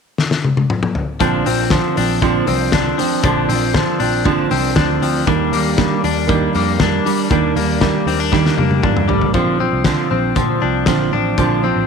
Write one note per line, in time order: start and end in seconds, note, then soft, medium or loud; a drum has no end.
0.18 snare medium
0.31 snare medium
0.45 high tom medium
0.57 high tom medium
0.70 mid tom medium
0.83 mid tom medium
0.95 floor tom medium
1.20 1.42 A#1 loud
1.20 1.46 A#2 medium
1.20 1.46 D3 medium
1.20 1.46 F3 medium
1.20 1.45 C4 medium
1.20 1.44 D4 medium
1.20 kick loud
1.20 closed hi-hat medium
1.45 1.79 A#1 medium
1.45 1.71 F3 soft
1.45 1.71 C4 soft
1.45 1.71 D4 medium
1.45 open hi-hat medium
1.70 1.96 D3 medium
1.70 1.97 F3 medium
1.70 1.96 C4 medium
1.70 1.95 D4 medium
1.70 kick loud
1.70 snare medium
1.70 closed hi-hat medium
1.96 2.40 A#1 medium
1.96 2.21 F3 soft
1.96 2.21 C4 soft
1.96 2.22 D4 soft
1.96 open hi-hat medium
2.22 2.47 A#2 medium
2.22 2.47 D3 medium
2.22 2.48 F3 medium
2.22 2.47 C4 medium
2.22 2.45 D4 medium
2.22 kick medium
2.22 closed hi-hat medium
2.46 2.91 C2 medium
2.46 2.72 F3 soft
2.46 2.73 C4 medium
2.46 2.72 D4 medium
2.46 open hi-hat medium
2.72 2.98 D3 medium
2.72 2.99 F3 medium
2.72 2.98 C4 medium
2.72 2.97 D4 medium
2.72 kick loud
2.72 snare loud
2.72 closed hi-hat medium
2.98 3.24 F3 soft
2.98 3.24 C4 medium
2.98 3.24 D4 medium
2.98 open hi-hat medium
3.23 3.45 A#1 loud
3.23 3.49 A#2 medium
3.23 3.50 D3 medium
3.23 3.50 F3 medium
3.23 3.49 C4 medium
3.23 3.48 D4 medium
3.23 kick loud
3.23 closed hi-hat medium
3.49 3.82 A#1 medium
3.49 3.74 F3 soft
3.49 3.74 C4 soft
3.49 3.75 D4 medium
3.49 open hi-hat medium
3.74 4.00 D3 medium
3.74 4.00 F3 medium
3.74 3.99 C4 medium
3.74 3.98 D4 medium
3.74 kick medium
3.74 snare medium
3.74 closed hi-hat medium
3.99 4.43 A#1 medium
3.99 4.24 F3 soft
3.99 4.24 C4 medium
3.99 4.25 D4 soft
3.99 open hi-hat medium
4.24 4.50 A#2 medium
4.24 4.51 D3 medium
4.24 4.51 F3 medium
4.24 4.49 C4 medium
4.24 4.48 D4 loud
4.24 kick loud
4.24 closed hi-hat medium
4.50 4.73 C2 medium
4.50 4.75 F3 soft
4.50 4.76 C4 medium
4.50 4.76 D4 medium
4.50 open hi-hat medium
4.75 4.98 D2 medium
4.75 5.01 D3 medium
4.75 5.02 F3 medium
4.75 5.01 C4 medium
4.75 5.00 D4 medium
4.75 kick loud
4.75 snare loud
4.75 closed hi-hat medium
5.01 5.24 D2 medium
5.01 5.26 F3 soft
5.01 5.27 C4 medium
5.01 5.26 D4 medium
5.01 open hi-hat medium
5.26 5.49 D#2 loud
5.26 5.52 D#3 medium
5.26 5.52 G3 medium
5.26 5.52 A#3 medium
5.26 5.51 D4 medium
5.26 kick loud
5.26 closed hi-hat medium
5.52 5.85 D#2 loud
5.52 5.77 G3 soft
5.52 5.77 A#3 soft
5.52 5.78 D4 medium
5.52 open hi-hat medium
5.77 6.03 D#3 medium
5.77 6.03 G3 medium
5.77 6.02 A#3 medium
5.77 6.01 D4 medium
5.77 kick medium
5.77 snare medium
5.77 closed hi-hat medium
6.02 6.47 D#2 medium
6.02 6.27 G3 soft
6.02 6.27 A#3 soft
6.02 6.28 D4 medium
6.02 open hi-hat medium
6.27 6.54 D#3 medium
6.27 6.54 G3 medium
6.27 6.53 A#3 medium
6.27 6.52 D4 medium
6.27 kick medium
6.27 closed hi-hat medium
6.53 6.98 F2 medium
6.53 6.79 G3 medium
6.53 6.79 A#3 medium
6.53 6.79 D4 medium
6.53 open hi-hat medium
6.79 7.05 D#3 medium
6.79 7.05 G3 medium
6.79 7.05 A#3 medium
6.79 7.03 D4 medium
6.79 kick loud
6.79 snare loud
6.79 closed hi-hat medium
7.05 7.29 G3 medium
7.05 7.30 A#3 medium
7.05 7.30 D4 medium
7.05 open hi-hat medium
7.30 7.52 D#2 loud
7.30 7.56 D#3 medium
7.30 7.56 G3 medium
7.30 7.56 A#3 medium
7.30 7.54 D4 medium
7.30 kick loud
7.30 closed hi-hat medium
7.55 7.89 D#2 medium
7.55 7.80 G3 soft
7.55 7.81 A#3 medium
7.55 7.81 D4 medium
7.55 open hi-hat medium
7.80 8.06 D#3 medium
7.80 8.07 G3 medium
7.80 8.07 A#3 medium
7.80 8.05 D4 medium
7.80 kick loud
7.80 snare medium
7.80 closed hi-hat medium
8.06 8.50 D#2 medium
8.06 8.31 G3 soft
8.06 8.32 A#3 soft
8.06 8.20 C4 medium
8.06 8.32 D4 medium
8.06 open hi-hat medium
8.20 8.82 D4 soft
8.31 8.57 D#3 medium
8.31 8.58 G3 medium
8.31 8.57 A#3 medium
8.31 8.56 D4 medium
8.31 kick medium
8.31 snare soft
8.46 snare medium
8.57 8.79 F2 medium
8.57 8.82 G3 soft
8.57 8.83 A#3 soft
8.57 8.83 D4 medium
8.57 high tom medium
8.71 high tom medium
8.82 9.05 G2 medium
8.82 9.08 D#3 medium
8.82 9.09 G3 medium
8.82 9.08 A#3 medium
8.82 9.07 D4 medium
8.82 kick medium
8.82 mid tom medium
8.97 mid tom medium
9.08 9.30 A1 medium
9.08 9.34 G3 soft
9.08 9.34 A#3 soft
9.08 9.34 D4 medium
9.08 floor tom medium
9.22 floor tom medium
9.34 9.67 A#1 loud
9.34 9.59 A#2 medium
9.34 9.60 D3 medium
9.34 9.60 F3 medium
9.34 9.59 C4 medium
9.34 9.58 D4 medium
9.34 kick medium
9.34 closed hi-hat medium
9.59 9.84 F3 soft
9.59 9.84 C4 soft
9.59 9.84 D4 soft
9.73 9.94 C2 medium
9.84 10.10 A#2 medium
9.84 10.10 D3 medium
9.84 10.11 F3 medium
9.84 10.10 C4 medium
9.84 10.09 D4 loud
9.84 kick loud
9.84 snare medium
9.84 closed hi-hat medium
10.10 10.33 A#1 medium
10.10 10.35 F3 soft
10.10 10.35 C4 medium
10.10 10.36 D4 soft
10.35 10.58 A#2 medium
10.35 10.61 D3 medium
10.35 10.61 F3 medium
10.35 10.61 C4 medium
10.35 10.60 D4 medium
10.35 kick loud
10.35 closed hi-hat medium
10.61 10.84 C2 medium
10.61 10.86 F3 soft
10.61 10.87 C4 medium
10.61 10.87 D4 medium
10.86 11.09 A#1 medium
10.86 11.12 A#2 medium
10.86 11.12 D3 medium
10.86 11.13 F3 medium
10.86 11.12 C4 medium
10.86 11.11 D4 medium
10.86 kick loud
10.86 snare loud
10.86 closed hi-hat medium
11.12 11.34 A1 medium
11.12 11.37 F3 soft
11.12 11.38 C4 medium
11.12 11.38 D4 medium
11.38 11.70 A#1 medium
11.38 11.63 A#2 medium
11.38 11.63 D3 medium
11.38 11.64 F3 medium
11.38 11.63 C4 medium
11.38 11.62 D4 medium
11.38 kick loud
11.38 closed hi-hat medium
11.63 11.87 F3 soft
11.63 11.87 C4 soft
11.63 11.87 D4 medium
11.76 11.87 A1 medium